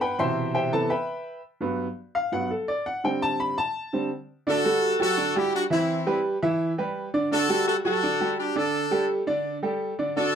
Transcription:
Already playing: G2 F#3 B3
0.01 B4 F#5 G5 B5
0.19 B2 C3 E3 C5 E5 G5 C6
0.55 G4 C5 E5 G5
0.72 C3 E3 B3 A4 A5
0.90 B4 E5 G5 B5
1.61 G2 F#3 B3
2.15 F5
2.32 G2 F#3 B3 F#5
2.51 A4
2.68 D5
2.86 F#5
3.04 D3 G3 C4 G5
3.22 A5
3.40 B5
3.58 A5
3.93 D3 G3 C4
4.47 D3 D4 F#4 A4 D5
4.65 G3 F#4 A4
4.99 F#3 F#4 G4 A4
5.17 D3 D4 D5
5.36 G3 E4 F#4 G4
5.54 D4 F#4
5.70 E3 C4 E4 E5
6.07 G3 G4 B4
6.43 E3 E4 E5
6.78 G3 G4 B4
7.14 D3 D4 D5
7.31 D3 D4 F#4 A4 D5
7.49 G3 F#4 G4
7.68 F#4 A4
7.85 F#3 F#4 G4 A4
8.03 D3 D4 D5
8.20 G3 F#4 G4
8.39 D4 G4
8.56 D3 D4 A4 D5
8.91 G3 G4 A4
9.27 D3 D4 D5
9.63 G3 G4 A4
9.99 D3 D4 D5
10.17 D3 D4 F#4 A4 D5

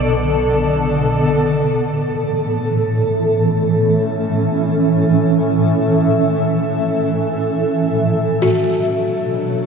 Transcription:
Already playing: B1 B2 D3 B3 A4 D5
1.33 A2
1.70 E3
2.16 E5
2.74 C#4
8.00 B2
8.18 F#3
8.42 F#4
8.69 D4
8.79 C#5

